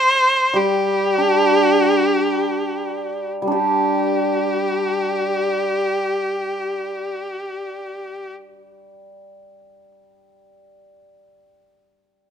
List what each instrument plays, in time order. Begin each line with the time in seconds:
Already playing: erhu C5
0.54 hammered dulcimer G3, erhu G4
1.18 hammered dulcimer D4
3.42 hammered dulcimer G3
3.47 hammered dulcimer D4
3.52 hammered dulcimer G4
3.56 erhu G4